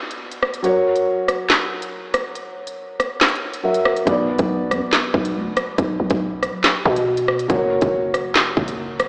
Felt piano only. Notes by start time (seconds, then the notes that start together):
Already playing: B2 B3 F#4 D5
0.63 F#3 F#4 A#4 C#5
3.63 F#3 F#4 A#4 E5
4.05 B2 B3 F#4 D5
7.48 F#3 F#4 A#4 C#5